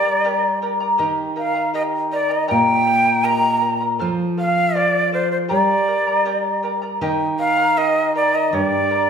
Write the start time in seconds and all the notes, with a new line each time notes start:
Already playing: G3 D5
0.05 A#4 D5 A#5
0.24 G4 A#4 D5 G5 A#5
0.62 A#4 D5 G5 A#5
0.80 A#4 D5 A#5
0.98 D#3 G4 A#4 D#5 G5 A#5
1.36 A#4 D#5 F5 G5 A#5
1.54 A#4 D#5 A#5
1.74 G4 A#4 D#5 G5 A#5
2.11 A#4 D5 D#5 G5 A#5
2.29 A#4 D#5 A#5
2.48 A#2 G4 A#4 D#5 G5 A#5
2.86 A#4 D#5 G5 A#5
3.05 A#4 D#5 A#5
3.23 G4 A#4 D#5 G5 A#5
3.61 A#4 D#5 G5 A#5
3.80 A#4 D#5 A#5
3.99 F3 A4 C5 F5
4.37 A4 C5 F5
4.55 C5 F5
4.75 A4 C5 D5 F5
5.12 A4 C5 F5
5.30 C5 F5
5.49 G3 G4 A#4 D5 G5 A#5
5.88 A#4 D5 G5 A#5
6.07 A#4 D5 A#5
6.25 G4 A#4 D5 G5 A#5
6.63 A#4 D5 G5 A#5
6.82 A#4 D5 A#5
7.01 D#3 G4 A#4 D#5 G5 A#5
7.38 A#4 D#5 F5 G5 A#5
7.58 A#4 D#5 A#5
7.77 G4 A#4 D#5 G5 A#5
8.14 A#4 D5 D#5 G5 A#5
8.33 A#4 D#5 A#5
8.52 G2 G4 A#4 D5 G5 A#5
8.89 A#4 D5 G5 A#5